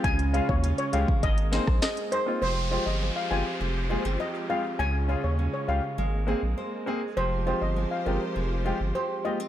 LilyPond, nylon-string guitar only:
\new Staff \with { instrumentName = "Nylon-string guitar" } { \time 4/4 \key f \minor \tempo 4 = 101 <des f'>8 des'8 f'8 aes8 aes8 c''8 aes'8 c''8 | <f g'>8 c'8 aes8 c'8 aes8 bes16 c'16 g'8 c'8 | <des des''>8 f'8 des'8 f'8 aes8 aes'8 c''8 aes'8 | <f g'>8 c'8 aes8 c'8 aes8 c'8 g'8 bes16 c'16 | }